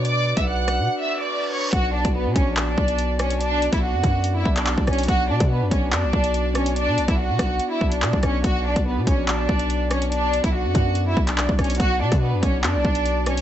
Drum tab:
HH |x-----x-----x-------------------|x-----x-----x---------x-x---x-x-|x---x-x-----x---x-----x-----xxxx|x-----x-----x---------x-x---x-x-|
CP |--------------------------------|----------------x---------------|----------------------x-x-------|----------------x---------------|
SD |------------r-------------------|----------------------------r---|----------------------------r---|----------------------------r---|
BD |------o-------------------------|o-----o-----o-------o-----------|------o-----o-------o-----o-----|o-----o-----o-------o-----------|

HH |x---x-x-----x---x-----x-----x---|x-----x-----x---------x-x---x-x-|x---x-x-----x---x-----x-----xxxx|x-----x-----x---------x-x---x-x-|
CP |------------------------x-------|----------------x---------------|----------------------x-x-------|----------------x---------------|
SD |------------r---------------r---|----------------------------r---|----------------------------r---|----------------------------r---|
BD |------o-----o-------o-----o-----|o-----o-----o-------o-----------|------o-----o-------o-----o-----|o-----o-----o-------o-----------|